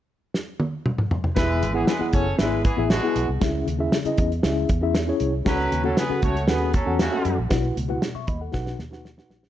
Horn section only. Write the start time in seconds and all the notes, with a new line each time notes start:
1.36 G#3 E4 B4
1.75 E3 B3 G#4
1.87 G#3 E4 B4
2.13 C#4 A4 C#5
2.39 G#3 E4 B4
2.64 E3 B3 G#4
2.90 B2 G#3 F#4
5.46 F#3 C#4 B4
5.85 F#3 C#4 A4
5.97 B3 G#4 B4
6.23 A3 F#4 C#5
6.49 B3 G#4 B4
6.74 F#3 C#4 A4
7.01 C#3 A3 F#4